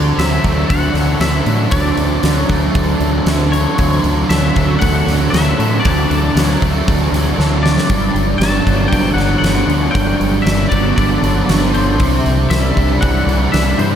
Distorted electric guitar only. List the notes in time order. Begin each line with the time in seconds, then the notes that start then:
Already playing: D3
0.18 F#3
0.43 A3
0.69 D3
0.94 F#3
1.20 D3
1.45 F#3
1.71 D3
2.24 F#3
2.49 A3
2.76 D3
3.02 F#3
3.28 D3
3.53 F#3
3.79 D3
4.31 F#3
4.57 A3
4.82 D3
5.08 F#3
5.33 D3
5.60 F#3
5.85 D3
6.36 F#3
6.60 A3
6.85 D3
7.12 F#3
7.38 D3
7.63 F#3
7.89 G2
8.41 F#3
8.65 B3
8.92 D3
9.17 F#3
9.44 D3
9.68 F#3
9.94 G2
10.45 F#3
10.71 B3
10.97 D3
11.22 F#3
11.48 D3
11.72 F#3
11.99 C3
12.51 G3
12.75 D4
13.01 E3
13.27 G3
13.53 E3
13.79 G3